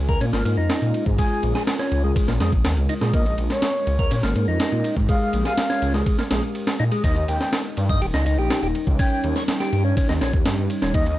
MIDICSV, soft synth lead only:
0, 0, Header, 1, 2, 480
1, 0, Start_track
1, 0, Tempo, 487805
1, 1169, Time_signature, 4, 2, 24, 8
1, 11010, End_track
2, 0, Start_track
2, 0, Title_t, "Soft synth lead"
2, 0, Program_c, 0, 80
2, 1162, Note_on_c, 0, 80, 87
2, 1242, Note_off_c, 0, 80, 0
2, 1281, Note_on_c, 0, 80, 74
2, 1362, Note_off_c, 0, 80, 0
2, 3089, Note_on_c, 0, 75, 87
2, 3166, Note_off_c, 0, 75, 0
2, 3206, Note_on_c, 0, 75, 72
2, 3284, Note_off_c, 0, 75, 0
2, 3447, Note_on_c, 0, 73, 96
2, 4120, Note_off_c, 0, 73, 0
2, 5009, Note_on_c, 0, 77, 86
2, 5086, Note_off_c, 0, 77, 0
2, 5131, Note_on_c, 0, 77, 73
2, 5207, Note_off_c, 0, 77, 0
2, 5368, Note_on_c, 0, 77, 98
2, 5728, Note_off_c, 0, 77, 0
2, 6928, Note_on_c, 0, 75, 85
2, 7005, Note_off_c, 0, 75, 0
2, 7048, Note_on_c, 0, 75, 72
2, 7125, Note_off_c, 0, 75, 0
2, 7169, Note_on_c, 0, 79, 84
2, 7246, Note_off_c, 0, 79, 0
2, 7291, Note_on_c, 0, 79, 75
2, 7367, Note_off_c, 0, 79, 0
2, 8851, Note_on_c, 0, 79, 83
2, 8927, Note_off_c, 0, 79, 0
2, 8970, Note_on_c, 0, 79, 74
2, 9046, Note_off_c, 0, 79, 0
2, 10771, Note_on_c, 0, 75, 91
2, 10847, Note_off_c, 0, 75, 0
2, 10889, Note_on_c, 0, 75, 77
2, 10966, Note_off_c, 0, 75, 0
2, 11010, End_track
0, 0, End_of_file